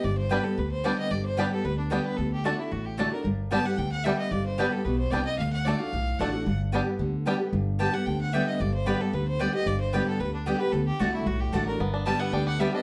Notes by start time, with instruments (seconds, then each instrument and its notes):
0.03 upright bass G1, steel-string acoustic guitar G2, fiddle D5
0.17 fiddle C5
0.29 steel-string acoustic guitar D3 G3 B3 G4, five-string banjo G3 B3 D4, mandolin B3 G4 D5 G5, fiddle B4
0.44 steel-string acoustic guitar B3 G4, fiddle A4
0.58 upright bass D2, steel-string acoustic guitar D3, fiddle B4
0.71 fiddle C5
0.84 steel-string acoustic guitar D3 G3 B3 G4, five-string banjo G3 B3 D4, mandolin B3 G4 D5 G5, fiddle D5
0.98 fiddle D#5
1.11 upright bass G1, steel-string acoustic guitar G2, fiddle D5
1.25 fiddle C5
1.37 steel-string acoustic guitar D3 G3 B3 G4, five-string banjo G3 B3 D4, mandolin B3 G4 D5 G5, fiddle B4
1.51 steel-string acoustic guitar B3 G4, fiddle A4
1.65 upright bass D2, steel-string acoustic guitar D3, fiddle B4
1.78 fiddle D4
1.90 steel-string acoustic guitar D3 G3 B3 G4, five-string banjo G3 B3 D4, mandolin B3 G4 D5 G5, fiddle G4
2.05 fiddle B4
2.17 upright bass D2, steel-string acoustic guitar D3, fiddle A4
2.32 fiddle G4
2.44 steel-string acoustic guitar D3 A3 D4 F#4, mandolin A3 F#4 D5 A5, five-string banjo A3 D4, fiddle F#4
2.58 steel-string acoustic guitar D4 F#4, fiddle E4
2.72 upright bass A1, steel-string acoustic guitar A2, fiddle F#4
2.85 fiddle G4
2.97 steel-string acoustic guitar D3 A3 D4 F#4, mandolin A3 F#4 D5 A5, five-string banjo A3 D4, fiddle A4
3.11 steel-string acoustic guitar D4 F#4, fiddle A#4
3.24 upright bass G1, steel-string acoustic guitar G2
3.51 steel-string acoustic guitar D3 G3 B3 G4, five-string banjo G3 B3 D4, mandolin B3 G4 D5 G5, fiddle A5
3.64 steel-string acoustic guitar B3 G4, fiddle F#5
3.78 upright bass D2, steel-string acoustic guitar D3, fiddle G5
3.92 fiddle F#5
4.04 steel-string acoustic guitar D3 G3 B3 G4, five-string banjo G3 B3 D4, mandolin B3 G4 D5 G5, fiddle E5
4.18 fiddle D#5
4.31 upright bass G1, steel-string acoustic guitar G2, fiddle D5
4.46 fiddle C5
4.58 steel-string acoustic guitar D3 G3 B3 G4, five-string banjo G3 B3 D4, mandolin B3 G4 D5 G5, fiddle B4
4.72 steel-string acoustic guitar B3 G4, fiddle A4
4.85 upright bass B1, steel-string acoustic guitar B2, fiddle B4
4.98 fiddle C5
5.11 upright bass C2, steel-string acoustic guitar C3, five-string banjo G3 B3 D4, mandolin B3 G4 D5 G5, fiddle D5
5.25 fiddle D#5
5.38 upright bass D2, steel-string acoustic guitar D3, fiddle F5
5.52 fiddle F#5
5.65 steel-string acoustic guitar D3 A3 D4 F#4, mandolin A3 F#4 D5 A5, five-string banjo A3 D4, fiddle D5
5.79 steel-string acoustic guitar D4 F#4, fiddle F5
5.93 upright bass B1, steel-string acoustic guitar A2
6.19 upright bass A1, steel-string acoustic guitar D3 A3 D4 F#4, mandolin A3 F#4 D5 A5, five-string banjo A3 D4, fiddle F#5
6.33 steel-string acoustic guitar D4 F#4
6.46 upright bass G1, steel-string acoustic guitar G2
6.72 steel-string acoustic guitar D3 G3 B3 G4, five-string banjo G3 B3 D4, mandolin B3 G4 D5 G5
6.86 steel-string acoustic guitar B3 G4
6.99 upright bass D2, steel-string acoustic guitar D3
7.26 steel-string acoustic guitar D3 G3 B3 G4, five-string banjo G3 B3 D4, mandolin B3 G4 D5 G5
7.40 steel-string acoustic guitar B3 G4
7.53 upright bass G1, steel-string acoustic guitar G2
7.79 steel-string acoustic guitar D3 G3 B3 G4, mandolin B3 G4 D5 G5, fiddle A5
7.93 steel-string acoustic guitar B3 G4, fiddle F#5
8.06 upright bass D2, steel-string acoustic guitar D3, fiddle G5
8.21 fiddle F#5
8.33 steel-string acoustic guitar D3 G3 B3 G4, mandolin B3 G4 D5 G5, fiddle E5
8.47 fiddle D#5
8.60 upright bass G1, steel-string acoustic guitar G2, fiddle D5
8.74 fiddle C5
8.86 steel-string acoustic guitar D3 G3 B3 G4, mandolin B3 G4 D5 G5, fiddle B4
9.00 steel-string acoustic guitar B3 G4, fiddle A4
9.13 upright bass D2, steel-string acoustic guitar D3, fiddle B4
9.28 fiddle C5
9.39 steel-string acoustic guitar D3 G3 B3 G4, mandolin B3 G4 D5 G5, fiddle D5
9.54 steel-string acoustic guitar B3 G4, fiddle D#5
9.66 upright bass G1, steel-string acoustic guitar G2, fiddle D5
9.80 fiddle C5
9.93 steel-string acoustic guitar D3 G3 B3 G4, mandolin B3 G4 D5 G5, fiddle B4
10.07 fiddle A4
10.20 upright bass D2, steel-string acoustic guitar D3, fiddle B4
10.34 fiddle D4
10.46 steel-string acoustic guitar D3 G3 B3 G4, mandolin B3 G4 D5 G5, fiddle G4
10.59 steel-string acoustic guitar B3 G4, fiddle B4
10.72 upright bass D2, steel-string acoustic guitar D3, fiddle A4
10.86 fiddle G4
10.99 upright bass C2, steel-string acoustic guitar D3 A3 D4 F#4, mandolin A3 F#4 D5 A5, fiddle F#4
11.13 fiddle E4
11.26 upright bass B1, steel-string acoustic guitar A2, fiddle F#4
11.40 fiddle G4
11.53 upright bass A1, steel-string acoustic guitar D3 A3 D4 F#4, mandolin A3 F#4 D5 A5, fiddle A4
11.66 steel-string acoustic guitar D4 F#4, fiddle A#4
11.79 upright bass G1, steel-string acoustic guitar G2, five-string banjo B3
11.94 five-string banjo D4
12.06 steel-string acoustic guitar D3 G3 B3 G4, five-string banjo G3, mandolin B3 G4 D5 G5, fiddle A5
12.19 five-string banjo B3, fiddle F#5
12.33 upright bass D2, steel-string acoustic guitar D3, five-string banjo D4, fiddle G5
12.47 five-string banjo G4, fiddle F#5
12.59 steel-string acoustic guitar D3 G3 B3 G4, five-string banjo G3, mandolin B3 G4 D5 G5, fiddle E5
12.73 steel-string acoustic guitar B3 G4, five-string banjo D4, fiddle D#5